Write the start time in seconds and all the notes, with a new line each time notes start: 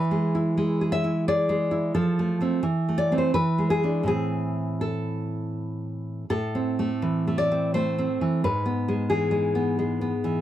Already playing: E3 B4
0.11 G#3
0.35 E4
0.57 G#3
0.81 G#4
0.92 E5
1.04 E4
1.28 G#4 D5
1.49 G#3
1.71 E4
1.95 F3 A4
2.19 A3
2.41 A3 C4
2.63 E3
2.89 A3
2.98 D5
3.12 A3 C4
3.18 C5
3.34 E3 B4
3.58 G#3
3.70 G#4
3.83 G#3 D4
4.03 A2 E3 C4
4.08 G#4
4.81 A4
6.30 A2 A4
6.55 C4
6.79 A3
7.02 E3
7.27 A3
7.38 D5
7.52 C4
7.74 A3 C5
7.99 C4
8.21 E3
8.44 G#2 B4
8.66 B3
8.88 G#3
9.10 E3 G#4
9.31 G#3
9.55 B3
9.79 G#3
10.01 B3
10.24 E3